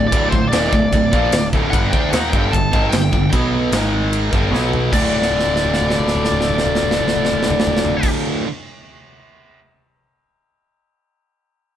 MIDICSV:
0, 0, Header, 1, 5, 480
1, 0, Start_track
1, 0, Tempo, 401070
1, 150, Time_signature, 4, 2, 24, 8
1, 14079, End_track
2, 0, Start_track
2, 0, Title_t, "Lead electric guitar"
2, 0, Program_c, 0, 29
2, 91, Note_on_c, 0, 74, 93
2, 348, Note_off_c, 0, 74, 0
2, 353, Note_on_c, 0, 72, 83
2, 576, Note_off_c, 0, 72, 0
2, 581, Note_on_c, 0, 74, 82
2, 1751, Note_off_c, 0, 74, 0
2, 2039, Note_on_c, 0, 78, 99
2, 2236, Note_off_c, 0, 78, 0
2, 2271, Note_on_c, 0, 78, 66
2, 2280, Note_on_c, 0, 79, 89
2, 2316, Note_off_c, 0, 78, 0
2, 2519, Note_off_c, 0, 79, 0
2, 2523, Note_on_c, 0, 78, 85
2, 2749, Note_off_c, 0, 78, 0
2, 2754, Note_on_c, 0, 79, 88
2, 3013, Note_on_c, 0, 81, 99
2, 3014, Note_off_c, 0, 79, 0
2, 3464, Note_on_c, 0, 79, 84
2, 3509, Note_off_c, 0, 81, 0
2, 3925, Note_off_c, 0, 79, 0
2, 5900, Note_on_c, 0, 74, 83
2, 9670, Note_off_c, 0, 74, 0
2, 14079, End_track
3, 0, Start_track
3, 0, Title_t, "Distorted electric guitar"
3, 0, Program_c, 1, 30
3, 136, Note_on_c, 1, 38, 83
3, 146, Note_on_c, 1, 45, 91
3, 150, Note_on_c, 1, 50, 94
3, 368, Note_off_c, 1, 38, 0
3, 372, Note_off_c, 1, 45, 0
3, 381, Note_off_c, 1, 50, 0
3, 382, Note_on_c, 1, 38, 64
3, 387, Note_on_c, 1, 45, 76
3, 576, Note_off_c, 1, 38, 0
3, 579, Note_off_c, 1, 45, 0
3, 617, Note_on_c, 1, 39, 85
3, 628, Note_on_c, 1, 46, 101
3, 633, Note_on_c, 1, 51, 109
3, 854, Note_off_c, 1, 39, 0
3, 859, Note_off_c, 1, 46, 0
3, 862, Note_off_c, 1, 51, 0
3, 866, Note_on_c, 1, 38, 58
3, 867, Note_on_c, 1, 45, 70
3, 1057, Note_off_c, 1, 38, 0
3, 1058, Note_off_c, 1, 45, 0
3, 1113, Note_on_c, 1, 38, 62
3, 1121, Note_on_c, 1, 45, 78
3, 1300, Note_off_c, 1, 38, 0
3, 1304, Note_off_c, 1, 45, 0
3, 1357, Note_on_c, 1, 46, 78
3, 1365, Note_on_c, 1, 53, 97
3, 1376, Note_on_c, 1, 58, 97
3, 1582, Note_off_c, 1, 46, 0
3, 1586, Note_off_c, 1, 53, 0
3, 1592, Note_off_c, 1, 58, 0
3, 1594, Note_on_c, 1, 38, 61
3, 1600, Note_on_c, 1, 45, 64
3, 1780, Note_off_c, 1, 38, 0
3, 1783, Note_off_c, 1, 45, 0
3, 1842, Note_on_c, 1, 38, 87
3, 1848, Note_on_c, 1, 45, 95
3, 1851, Note_on_c, 1, 50, 108
3, 2060, Note_off_c, 1, 38, 0
3, 2065, Note_on_c, 1, 43, 84
3, 2066, Note_off_c, 1, 50, 0
3, 2067, Note_off_c, 1, 45, 0
3, 2080, Note_on_c, 1, 50, 90
3, 2093, Note_on_c, 1, 55, 91
3, 2295, Note_off_c, 1, 43, 0
3, 2303, Note_off_c, 1, 50, 0
3, 2309, Note_off_c, 1, 55, 0
3, 2326, Note_on_c, 1, 50, 84
3, 2328, Note_on_c, 1, 57, 93
3, 2335, Note_on_c, 1, 62, 104
3, 2542, Note_off_c, 1, 50, 0
3, 2546, Note_off_c, 1, 57, 0
3, 2547, Note_on_c, 1, 51, 92
3, 2550, Note_off_c, 1, 62, 0
3, 2560, Note_on_c, 1, 58, 116
3, 2566, Note_on_c, 1, 63, 114
3, 2776, Note_off_c, 1, 51, 0
3, 2782, Note_off_c, 1, 58, 0
3, 2785, Note_off_c, 1, 63, 0
3, 2792, Note_on_c, 1, 43, 80
3, 2801, Note_on_c, 1, 50, 90
3, 2808, Note_on_c, 1, 55, 96
3, 3018, Note_off_c, 1, 43, 0
3, 3023, Note_off_c, 1, 50, 0
3, 3026, Note_off_c, 1, 55, 0
3, 3043, Note_on_c, 1, 50, 64
3, 3045, Note_on_c, 1, 43, 66
3, 3222, Note_off_c, 1, 50, 0
3, 3223, Note_off_c, 1, 43, 0
3, 3265, Note_on_c, 1, 44, 91
3, 3272, Note_on_c, 1, 51, 92
3, 3287, Note_on_c, 1, 56, 93
3, 3494, Note_off_c, 1, 44, 0
3, 3497, Note_off_c, 1, 51, 0
3, 3505, Note_off_c, 1, 56, 0
3, 3529, Note_on_c, 1, 43, 60
3, 3537, Note_on_c, 1, 50, 67
3, 3705, Note_off_c, 1, 43, 0
3, 3709, Note_off_c, 1, 50, 0
3, 3758, Note_on_c, 1, 43, 58
3, 3767, Note_on_c, 1, 50, 68
3, 3939, Note_off_c, 1, 43, 0
3, 3944, Note_off_c, 1, 50, 0
3, 3988, Note_on_c, 1, 47, 82
3, 3992, Note_on_c, 1, 54, 88
3, 3997, Note_on_c, 1, 59, 90
3, 4455, Note_off_c, 1, 47, 0
3, 4457, Note_off_c, 1, 54, 0
3, 4459, Note_off_c, 1, 59, 0
3, 4468, Note_on_c, 1, 44, 90
3, 4471, Note_on_c, 1, 51, 106
3, 4478, Note_on_c, 1, 56, 107
3, 5162, Note_off_c, 1, 44, 0
3, 5166, Note_on_c, 1, 43, 89
3, 5172, Note_off_c, 1, 51, 0
3, 5176, Note_on_c, 1, 50, 95
3, 5179, Note_off_c, 1, 56, 0
3, 5185, Note_on_c, 1, 55, 100
3, 5397, Note_off_c, 1, 43, 0
3, 5402, Note_on_c, 1, 47, 88
3, 5406, Note_off_c, 1, 50, 0
3, 5410, Note_on_c, 1, 54, 91
3, 5413, Note_off_c, 1, 55, 0
3, 5419, Note_on_c, 1, 59, 87
3, 5880, Note_off_c, 1, 47, 0
3, 5884, Note_on_c, 1, 38, 74
3, 5886, Note_off_c, 1, 54, 0
3, 5890, Note_off_c, 1, 59, 0
3, 5907, Note_on_c, 1, 45, 85
3, 5927, Note_on_c, 1, 50, 87
3, 10073, Note_off_c, 1, 38, 0
3, 10095, Note_off_c, 1, 45, 0
3, 10116, Note_off_c, 1, 50, 0
3, 14079, End_track
4, 0, Start_track
4, 0, Title_t, "Picked electric bass"
4, 0, Program_c, 2, 34
4, 0, Note_on_c, 2, 26, 77
4, 133, Note_off_c, 2, 26, 0
4, 148, Note_on_c, 2, 26, 94
4, 371, Note_off_c, 2, 26, 0
4, 389, Note_on_c, 2, 26, 78
4, 600, Note_off_c, 2, 26, 0
4, 607, Note_on_c, 2, 27, 97
4, 838, Note_off_c, 2, 27, 0
4, 867, Note_on_c, 2, 26, 76
4, 1089, Note_off_c, 2, 26, 0
4, 1109, Note_on_c, 2, 26, 79
4, 1330, Note_off_c, 2, 26, 0
4, 1350, Note_on_c, 2, 34, 89
4, 1565, Note_off_c, 2, 34, 0
4, 1572, Note_on_c, 2, 26, 84
4, 1800, Note_off_c, 2, 26, 0
4, 1836, Note_on_c, 2, 26, 95
4, 2052, Note_off_c, 2, 26, 0
4, 2068, Note_on_c, 2, 31, 92
4, 2287, Note_off_c, 2, 31, 0
4, 2308, Note_on_c, 2, 38, 83
4, 2527, Note_off_c, 2, 38, 0
4, 2544, Note_on_c, 2, 39, 91
4, 2765, Note_off_c, 2, 39, 0
4, 2789, Note_on_c, 2, 31, 91
4, 3007, Note_off_c, 2, 31, 0
4, 3029, Note_on_c, 2, 31, 76
4, 3247, Note_off_c, 2, 31, 0
4, 3271, Note_on_c, 2, 32, 98
4, 3485, Note_off_c, 2, 32, 0
4, 3492, Note_on_c, 2, 31, 78
4, 3717, Note_off_c, 2, 31, 0
4, 3738, Note_on_c, 2, 31, 85
4, 3960, Note_off_c, 2, 31, 0
4, 3979, Note_on_c, 2, 35, 89
4, 4424, Note_off_c, 2, 35, 0
4, 4453, Note_on_c, 2, 32, 88
4, 5126, Note_off_c, 2, 32, 0
4, 5179, Note_on_c, 2, 31, 90
4, 5398, Note_off_c, 2, 31, 0
4, 5405, Note_on_c, 2, 35, 96
4, 5856, Note_off_c, 2, 35, 0
4, 5891, Note_on_c, 2, 26, 90
4, 9666, Note_off_c, 2, 26, 0
4, 14079, End_track
5, 0, Start_track
5, 0, Title_t, "Drums"
5, 148, Note_on_c, 9, 36, 106
5, 149, Note_on_c, 9, 53, 72
5, 267, Note_off_c, 9, 36, 0
5, 269, Note_off_c, 9, 53, 0
5, 388, Note_on_c, 9, 36, 91
5, 508, Note_off_c, 9, 36, 0
5, 630, Note_on_c, 9, 53, 68
5, 640, Note_on_c, 9, 38, 102
5, 750, Note_off_c, 9, 53, 0
5, 759, Note_off_c, 9, 38, 0
5, 869, Note_on_c, 9, 36, 91
5, 989, Note_off_c, 9, 36, 0
5, 1108, Note_on_c, 9, 36, 85
5, 1115, Note_on_c, 9, 53, 60
5, 1228, Note_off_c, 9, 36, 0
5, 1234, Note_off_c, 9, 53, 0
5, 1352, Note_on_c, 9, 36, 109
5, 1472, Note_off_c, 9, 36, 0
5, 1584, Note_on_c, 9, 53, 65
5, 1594, Note_on_c, 9, 38, 115
5, 1704, Note_off_c, 9, 53, 0
5, 1713, Note_off_c, 9, 38, 0
5, 1831, Note_on_c, 9, 36, 91
5, 1951, Note_off_c, 9, 36, 0
5, 2074, Note_on_c, 9, 36, 109
5, 2081, Note_on_c, 9, 53, 65
5, 2193, Note_off_c, 9, 36, 0
5, 2201, Note_off_c, 9, 53, 0
5, 2311, Note_on_c, 9, 36, 102
5, 2431, Note_off_c, 9, 36, 0
5, 2548, Note_on_c, 9, 53, 66
5, 2558, Note_on_c, 9, 38, 100
5, 2668, Note_off_c, 9, 53, 0
5, 2678, Note_off_c, 9, 38, 0
5, 2792, Note_on_c, 9, 36, 104
5, 2911, Note_off_c, 9, 36, 0
5, 3032, Note_on_c, 9, 36, 78
5, 3043, Note_on_c, 9, 53, 62
5, 3152, Note_off_c, 9, 36, 0
5, 3162, Note_off_c, 9, 53, 0
5, 3270, Note_on_c, 9, 36, 111
5, 3390, Note_off_c, 9, 36, 0
5, 3500, Note_on_c, 9, 53, 65
5, 3509, Note_on_c, 9, 38, 109
5, 3620, Note_off_c, 9, 53, 0
5, 3629, Note_off_c, 9, 38, 0
5, 3744, Note_on_c, 9, 36, 73
5, 3864, Note_off_c, 9, 36, 0
5, 3980, Note_on_c, 9, 53, 73
5, 3982, Note_on_c, 9, 36, 97
5, 4100, Note_off_c, 9, 53, 0
5, 4102, Note_off_c, 9, 36, 0
5, 4457, Note_on_c, 9, 53, 73
5, 4467, Note_on_c, 9, 38, 110
5, 4577, Note_off_c, 9, 53, 0
5, 4587, Note_off_c, 9, 38, 0
5, 4941, Note_on_c, 9, 53, 61
5, 5061, Note_off_c, 9, 53, 0
5, 5180, Note_on_c, 9, 36, 110
5, 5299, Note_off_c, 9, 36, 0
5, 5440, Note_on_c, 9, 38, 50
5, 5560, Note_off_c, 9, 38, 0
5, 5666, Note_on_c, 9, 43, 75
5, 5786, Note_off_c, 9, 43, 0
5, 5897, Note_on_c, 9, 36, 103
5, 5903, Note_on_c, 9, 49, 93
5, 6017, Note_off_c, 9, 36, 0
5, 6023, Note_off_c, 9, 49, 0
5, 6145, Note_on_c, 9, 43, 42
5, 6250, Note_on_c, 9, 38, 47
5, 6265, Note_off_c, 9, 43, 0
5, 6351, Note_on_c, 9, 43, 42
5, 6370, Note_off_c, 9, 38, 0
5, 6456, Note_on_c, 9, 38, 45
5, 6471, Note_off_c, 9, 43, 0
5, 6544, Note_on_c, 9, 43, 43
5, 6576, Note_off_c, 9, 38, 0
5, 6653, Note_on_c, 9, 38, 53
5, 6664, Note_off_c, 9, 43, 0
5, 6759, Note_on_c, 9, 43, 48
5, 6773, Note_off_c, 9, 38, 0
5, 6866, Note_on_c, 9, 38, 51
5, 6878, Note_off_c, 9, 43, 0
5, 6955, Note_on_c, 9, 43, 50
5, 6985, Note_off_c, 9, 38, 0
5, 7066, Note_on_c, 9, 38, 63
5, 7074, Note_off_c, 9, 43, 0
5, 7162, Note_on_c, 9, 43, 61
5, 7186, Note_off_c, 9, 38, 0
5, 7275, Note_on_c, 9, 38, 57
5, 7282, Note_off_c, 9, 43, 0
5, 7362, Note_on_c, 9, 43, 61
5, 7394, Note_off_c, 9, 38, 0
5, 7476, Note_on_c, 9, 38, 60
5, 7481, Note_off_c, 9, 43, 0
5, 7562, Note_on_c, 9, 43, 66
5, 7595, Note_off_c, 9, 38, 0
5, 7669, Note_on_c, 9, 38, 61
5, 7682, Note_off_c, 9, 43, 0
5, 7771, Note_on_c, 9, 43, 69
5, 7789, Note_off_c, 9, 38, 0
5, 7878, Note_on_c, 9, 38, 68
5, 7890, Note_off_c, 9, 43, 0
5, 7967, Note_on_c, 9, 43, 64
5, 7998, Note_off_c, 9, 38, 0
5, 8082, Note_on_c, 9, 38, 68
5, 8086, Note_off_c, 9, 43, 0
5, 8171, Note_on_c, 9, 43, 76
5, 8202, Note_off_c, 9, 38, 0
5, 8273, Note_on_c, 9, 38, 73
5, 8290, Note_off_c, 9, 43, 0
5, 8368, Note_on_c, 9, 43, 74
5, 8392, Note_off_c, 9, 38, 0
5, 8472, Note_on_c, 9, 38, 72
5, 8488, Note_off_c, 9, 43, 0
5, 8564, Note_on_c, 9, 43, 70
5, 8592, Note_off_c, 9, 38, 0
5, 8675, Note_on_c, 9, 38, 72
5, 8683, Note_off_c, 9, 43, 0
5, 8776, Note_on_c, 9, 43, 79
5, 8795, Note_off_c, 9, 38, 0
5, 8888, Note_on_c, 9, 38, 75
5, 8895, Note_off_c, 9, 43, 0
5, 8981, Note_on_c, 9, 43, 84
5, 9008, Note_off_c, 9, 38, 0
5, 9093, Note_on_c, 9, 38, 88
5, 9100, Note_off_c, 9, 43, 0
5, 9179, Note_on_c, 9, 43, 89
5, 9212, Note_off_c, 9, 38, 0
5, 9294, Note_on_c, 9, 38, 81
5, 9299, Note_off_c, 9, 43, 0
5, 9393, Note_on_c, 9, 43, 84
5, 9413, Note_off_c, 9, 38, 0
5, 9513, Note_off_c, 9, 43, 0
5, 9608, Note_on_c, 9, 49, 93
5, 9615, Note_on_c, 9, 36, 104
5, 9728, Note_off_c, 9, 49, 0
5, 9735, Note_off_c, 9, 36, 0
5, 14079, End_track
0, 0, End_of_file